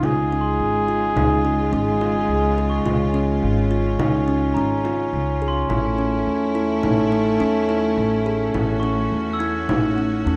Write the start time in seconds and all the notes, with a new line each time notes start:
0.02 C#2 C#3 G#3 F4 G#4, frame drum
0.32 C#4
0.41 C6
0.59 G#1
0.88 F4, frame drum
1.16 C#2 D#4, frame drum
1.45 C#4
1.72 G#1 C#4 G#4
2.01 F4, frame drum
2.29 C#2
2.58 G#4
2.70 C#6
2.85 C#2 C#4 F4, frame drum
3.14 C#4
3.42 G#1
3.71 F4
3.99 C#2 D#4, frame drum
4.28 C#4
4.54 G#1 C#4 A#5
4.85 F4, frame drum
5.13 C#2, frame drum
5.42 G#4
5.48 C6
5.68 A1 A3 C#4 E4, frame drum
5.98 C#4
6.27 E2
6.55 E4, frame drum
6.83 A1 D#4, frame drum
7.12 C#4
7.40 E2 C#4
7.68 E4, frame drum
7.98 A1, frame drum
8.26 G#4
8.54 A1 E4 F#4, frame drum
8.80 C#4 C#6
9.12 E2
9.33 E6
9.39 E4 G#6
9.69 A1 D#4, frame drum
9.98 C#4, frame drum
10.26 E2 C#4 A4, frame drum